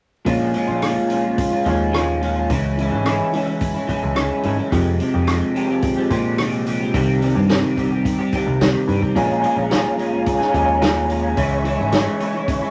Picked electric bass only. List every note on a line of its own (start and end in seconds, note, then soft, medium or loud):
0.27 0.52 A#1 medium
0.68 0.93 A#1 medium
1.66 2.46 D#2 medium
2.50 2.88 C#2 medium
2.92 3.17 G#1 medium
4.03 4.28 C#2 medium
4.44 4.57 G#1 medium
4.72 4.98 F2 medium
5.14 5.39 F2 medium
6.10 6.90 A#2 medium
6.94 7.32 C2 medium
7.35 7.61 G2 medium
8.47 8.72 C2 medium
8.88 9.01 G2 medium
9.16 9.41 A#1 medium
9.56 9.82 A#1 medium
10.54 11.33 D#2 medium
11.37 11.75 C#2 loud
11.80 12.04 G#1 medium